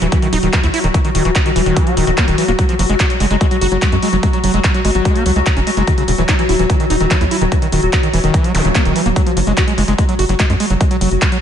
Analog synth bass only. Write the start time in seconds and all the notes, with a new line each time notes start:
0.02 D#1
0.33 D#1
0.43 D#1
0.64 D#2
0.84 D#1
1.15 D#1
1.25 D#1
1.56 E1
1.66 E1
1.97 D#1
2.07 D#1
2.28 D#1
2.48 D#1
2.79 F#1
2.90 F#1
3.20 F#1
3.31 F#1
3.61 F#1
3.72 F#1
3.92 F#2
4.13 F#1
4.44 F#1
4.54 F#1
4.85 G#1
4.95 G#1
5.26 C#2
5.36 C#2
5.57 F#1
5.77 F#1
6.08 D#1
6.18 D#1
6.49 D#1
6.59 D#1
6.90 D#1
7.00 D#1
7.21 D#2
7.42 D#1
7.72 D#1
7.83 D#1
8.13 E1
8.24 E1
8.55 D#1
8.65 D#1
8.85 D#1
9.06 D#1
9.37 F#1
9.47 F#1
9.78 F#1
9.88 F#1
10.19 F#1
10.29 F#1
10.50 F#2
10.70 F#1
11.01 F#1
11.11 F#1